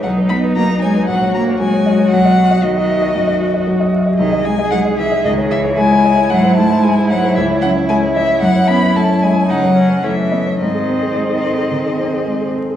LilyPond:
<<
  \new Staff \with { instrumentName = "Violin" } { \time 4/4 \key b \major \tempo 4 = 113 fis''8 b''8 ais''8 gis''8 fis''8 ais''8 gis''4 | fis''4 dis''2 r4 | \key gis \phrygian dis''8 gis''8 fis''8 e''8 dis''8 e''8 gis''4 | fis''8 a''8 gis''8 fis''8 e''8 fis''8 gis''8 e''8 |
fis''8 b''8 a''8 gis''8 fis''4 e''4 | dis''2.~ dis''8 r8 | }
  \new Staff \with { instrumentName = "Grand piano" } { \time 4/4 \key b \major b,,16 b'16 dis'16 b'16 fis16 b'16 cis''16 b'16 ais,,16 cis''16 fis'16 cis''16 fis16 cis''16 dis''16 cis''16 | b,,16 dis''16 fis'16 dis''16 fis16 dis''16 e''16 dis''16 fis,16 dis''16 fis'16 dis''16 fis16 dis''16 e''16 dis''16 | \key gis \phrygian bis,,16 dis''16 dis'16 dis''16 gis16 dis''16 e''16 dis''16 cis,16 cis''16 e'16 cis''16 gis16 cis''16 dis''16 cis''16 | gis,16 bis'16 dis'16 bis'16 gis16 bis'16 cis''16 bis'16 cis,16 cis''16 cis'16 cis''16 gis16 cis''16 dis''16 cis''16 |
fis,16 cis''16 cis'16 cis''16 a16 cis''16 dis''16 cis''16 cis16 cis''16 cis'16 cis''16 a8 dis''16 cis''16 | gis,16 gis'16 bis16 gis'16 gis16 gis'16 a'16 gis'16 dis16 gis'16 bis16 gis'16 gis16 gis'16 a'16 gis'16 | }
  \new Staff \with { instrumentName = "Viola" } { \time 4/4 \key b \major dis'2 fis'2~ | fis'1 | \key gis \phrygian gis'2. e'4~ | e'1~ |
e'2 dis'8 cis'8 cis'8 b8 | bis2.~ bis8 r8 | }
  \new Staff \with { instrumentName = "Cello" } { \clef bass \time 4/4 \key b \major fis8 b8 ais8 gis8 fis8 ais8 gis4 | fis4 dis2 r4 | \key gis \phrygian dis8 gis8 fis8 e8 dis8 e8 gis4 | fis8 a8 gis8 fis8 e8 fis8 gis8 e8 |
fis8 b8 a8 gis8 fis4 e4 | dis2.~ dis8 r8 | }
>>